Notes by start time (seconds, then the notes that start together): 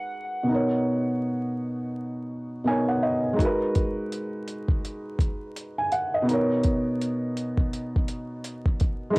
Already playing: G#3 D#4 F#4 A#4 B4 F#5
0.43 B2 B3
0.49 D#4 A#4
0.55 C#5
2.64 B2 B3 D#4 G#5
2.69 A#4 C#5
2.88 F#5
3.03 D#5
3.33 G#3 D#4
3.39 F#4 A#4, kick, closed hi-hat
3.45 B4
3.75 kick, closed hi-hat
4.12 closed hi-hat
4.48 closed hi-hat
4.68 kick
4.85 closed hi-hat
5.19 kick, closed hi-hat
5.56 closed hi-hat
5.78 G#5
5.92 F#5, closed hi-hat
6.14 D#5
6.22 B2 B3
6.27 D#4 A#4, closed hi-hat
6.33 C#5
6.63 kick, closed hi-hat
7.01 closed hi-hat
7.37 closed hi-hat
7.57 kick
7.73 closed hi-hat
7.96 kick
8.08 closed hi-hat
8.44 closed hi-hat
8.66 kick
8.80 kick, closed hi-hat
9.10 G#3 D#4